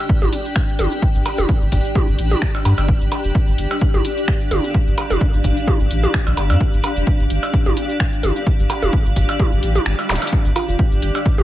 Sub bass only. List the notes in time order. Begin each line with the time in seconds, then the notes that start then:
0.22 G1
0.79 G1
1.15 G1
1.38 F1
1.62 G1
1.72 G1
2.08 G1
2.19 A1
2.65 G2
2.78 G1
3.01 G1
3.24 F1
3.48 G1
3.58 G1
3.94 G1
4.51 G1
4.87 G1
5.10 F1
5.34 G1
5.44 G1
5.80 G1
5.91 A1
6.27 A#1
6.37 G1
6.50 G2
6.73 G1
6.97 F1
7.20 G1
7.30 G1
7.66 G1
8.23 G1
8.59 G1
8.83 F1
9.06 G1
9.16 G1
9.52 G1
9.63 A1
9.86 G1
10.09 D1
10.45 G1
10.68 F1
10.92 G1
11.02 G1
11.38 G1